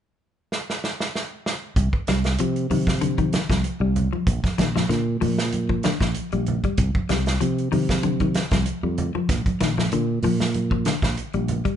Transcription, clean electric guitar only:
0, 0, Header, 1, 3, 480
1, 0, Start_track
1, 0, Key_signature, -3, "minor"
1, 0, Tempo, 626959
1, 1357, Time_signature, 4, 2, 24, 8
1, 9006, End_track
2, 0, Start_track
2, 0, Title_t, "Clean electric guitar"
2, 0, Program_c, 0, 27
2, 1597, Note_on_c, 0, 55, 67
2, 1811, Note_off_c, 0, 55, 0
2, 1838, Note_on_c, 0, 53, 73
2, 2052, Note_off_c, 0, 53, 0
2, 2074, Note_on_c, 0, 51, 75
2, 2290, Note_off_c, 0, 51, 0
2, 2307, Note_on_c, 0, 50, 80
2, 2427, Note_off_c, 0, 50, 0
2, 2437, Note_on_c, 0, 51, 67
2, 2656, Note_off_c, 0, 51, 0
2, 2683, Note_on_c, 0, 53, 66
2, 2899, Note_off_c, 0, 53, 0
2, 2918, Note_on_c, 0, 55, 63
2, 3136, Note_off_c, 0, 55, 0
2, 3159, Note_on_c, 0, 53, 61
2, 3376, Note_off_c, 0, 53, 0
2, 3509, Note_on_c, 0, 51, 75
2, 3628, Note_off_c, 0, 51, 0
2, 3641, Note_on_c, 0, 53, 74
2, 3742, Note_off_c, 0, 53, 0
2, 3747, Note_on_c, 0, 50, 75
2, 3966, Note_off_c, 0, 50, 0
2, 3990, Note_on_c, 0, 53, 81
2, 4208, Note_off_c, 0, 53, 0
2, 4360, Note_on_c, 0, 53, 66
2, 4462, Note_off_c, 0, 53, 0
2, 4476, Note_on_c, 0, 50, 73
2, 4592, Note_off_c, 0, 50, 0
2, 4603, Note_on_c, 0, 53, 64
2, 4819, Note_off_c, 0, 53, 0
2, 4844, Note_on_c, 0, 55, 62
2, 5059, Note_off_c, 0, 55, 0
2, 5089, Note_on_c, 0, 55, 67
2, 5186, Note_off_c, 0, 55, 0
2, 5431, Note_on_c, 0, 55, 72
2, 5648, Note_off_c, 0, 55, 0
2, 5670, Note_on_c, 0, 53, 79
2, 5887, Note_off_c, 0, 53, 0
2, 5909, Note_on_c, 0, 51, 76
2, 6127, Note_off_c, 0, 51, 0
2, 6152, Note_on_c, 0, 50, 83
2, 6269, Note_off_c, 0, 50, 0
2, 6287, Note_on_c, 0, 51, 66
2, 6501, Note_off_c, 0, 51, 0
2, 6522, Note_on_c, 0, 53, 70
2, 6738, Note_off_c, 0, 53, 0
2, 6764, Note_on_c, 0, 55, 60
2, 6980, Note_off_c, 0, 55, 0
2, 7005, Note_on_c, 0, 53, 68
2, 7220, Note_off_c, 0, 53, 0
2, 7357, Note_on_c, 0, 51, 75
2, 7472, Note_off_c, 0, 51, 0
2, 7488, Note_on_c, 0, 53, 70
2, 7586, Note_off_c, 0, 53, 0
2, 7602, Note_on_c, 0, 50, 76
2, 7814, Note_off_c, 0, 50, 0
2, 7843, Note_on_c, 0, 53, 75
2, 8055, Note_off_c, 0, 53, 0
2, 8208, Note_on_c, 0, 53, 65
2, 8306, Note_off_c, 0, 53, 0
2, 8320, Note_on_c, 0, 50, 77
2, 8434, Note_off_c, 0, 50, 0
2, 8683, Note_on_c, 0, 55, 66
2, 8899, Note_off_c, 0, 55, 0
2, 8920, Note_on_c, 0, 55, 65
2, 9006, Note_off_c, 0, 55, 0
2, 9006, End_track
3, 0, Start_track
3, 0, Title_t, "Muted clean electric guitar strokes"
3, 8455, Note_on_c, 9, 29, 68
3, 8531, Note_off_c, 9, 29, 0
3, 9006, End_track
0, 0, End_of_file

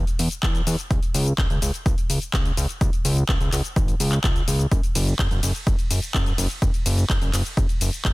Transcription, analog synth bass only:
0, 0, Header, 1, 2, 480
1, 0, Start_track
1, 0, Tempo, 476190
1, 913, Time_signature, 4, 2, 24, 8
1, 8195, End_track
2, 0, Start_track
2, 0, Title_t, "Analog synth bass"
2, 0, Program_c, 0, 38
2, 194, Note_on_c, 0, 40, 88
2, 288, Note_off_c, 0, 40, 0
2, 433, Note_on_c, 0, 40, 88
2, 623, Note_off_c, 0, 40, 0
2, 674, Note_on_c, 0, 40, 106
2, 768, Note_off_c, 0, 40, 0
2, 913, Note_on_c, 0, 37, 101
2, 1008, Note_off_c, 0, 37, 0
2, 1154, Note_on_c, 0, 37, 104
2, 1343, Note_off_c, 0, 37, 0
2, 1393, Note_on_c, 0, 37, 94
2, 1488, Note_off_c, 0, 37, 0
2, 1514, Note_on_c, 0, 37, 98
2, 1608, Note_off_c, 0, 37, 0
2, 1634, Note_on_c, 0, 37, 88
2, 1728, Note_off_c, 0, 37, 0
2, 1873, Note_on_c, 0, 37, 94
2, 1968, Note_off_c, 0, 37, 0
2, 2114, Note_on_c, 0, 37, 89
2, 2208, Note_off_c, 0, 37, 0
2, 2353, Note_on_c, 0, 37, 90
2, 2542, Note_off_c, 0, 37, 0
2, 2594, Note_on_c, 0, 37, 106
2, 2688, Note_off_c, 0, 37, 0
2, 2833, Note_on_c, 0, 37, 99
2, 2928, Note_off_c, 0, 37, 0
2, 3073, Note_on_c, 0, 37, 102
2, 3263, Note_off_c, 0, 37, 0
2, 3313, Note_on_c, 0, 37, 94
2, 3408, Note_off_c, 0, 37, 0
2, 3433, Note_on_c, 0, 37, 97
2, 3528, Note_off_c, 0, 37, 0
2, 3553, Note_on_c, 0, 37, 91
2, 3648, Note_off_c, 0, 37, 0
2, 3793, Note_on_c, 0, 32, 96
2, 3983, Note_off_c, 0, 32, 0
2, 4033, Note_on_c, 0, 37, 93
2, 4223, Note_off_c, 0, 37, 0
2, 4273, Note_on_c, 0, 37, 87
2, 4463, Note_off_c, 0, 37, 0
2, 4513, Note_on_c, 0, 37, 87
2, 4703, Note_off_c, 0, 37, 0
2, 4753, Note_on_c, 0, 30, 94
2, 4848, Note_off_c, 0, 30, 0
2, 4994, Note_on_c, 0, 30, 99
2, 5183, Note_off_c, 0, 30, 0
2, 5233, Note_on_c, 0, 30, 95
2, 5328, Note_off_c, 0, 30, 0
2, 5354, Note_on_c, 0, 30, 94
2, 5448, Note_off_c, 0, 30, 0
2, 5474, Note_on_c, 0, 30, 90
2, 5568, Note_off_c, 0, 30, 0
2, 5713, Note_on_c, 0, 30, 98
2, 5808, Note_off_c, 0, 30, 0
2, 5954, Note_on_c, 0, 30, 91
2, 6048, Note_off_c, 0, 30, 0
2, 6193, Note_on_c, 0, 30, 92
2, 6383, Note_off_c, 0, 30, 0
2, 6433, Note_on_c, 0, 30, 104
2, 6528, Note_off_c, 0, 30, 0
2, 6673, Note_on_c, 0, 30, 98
2, 6768, Note_off_c, 0, 30, 0
2, 6913, Note_on_c, 0, 30, 103
2, 7103, Note_off_c, 0, 30, 0
2, 7153, Note_on_c, 0, 30, 94
2, 7248, Note_off_c, 0, 30, 0
2, 7273, Note_on_c, 0, 30, 96
2, 7368, Note_off_c, 0, 30, 0
2, 7393, Note_on_c, 0, 30, 91
2, 7488, Note_off_c, 0, 30, 0
2, 7633, Note_on_c, 0, 30, 96
2, 7728, Note_off_c, 0, 30, 0
2, 7873, Note_on_c, 0, 30, 94
2, 7968, Note_off_c, 0, 30, 0
2, 8113, Note_on_c, 0, 30, 93
2, 8195, Note_off_c, 0, 30, 0
2, 8195, End_track
0, 0, End_of_file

